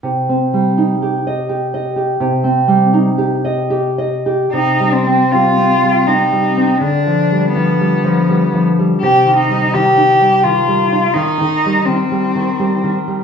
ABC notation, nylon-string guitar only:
X:1
M:3/4
L:1/8
Q:1/4=82
K:Cm
V:1 name="Nylon-string guitar" clef=bass
(3C, C G, (3E G e (3G e G | (3C, C G, (3E G e (3G e G | (3C, G, C (3G, C G, (3C G, C | (3D, F, G, (3F, G, F, (3G, F, G, |
(3C, E, G, (3E, E G, (3E, G, E | (3E, E, G, (3E, G, E, (3G, E, G, |]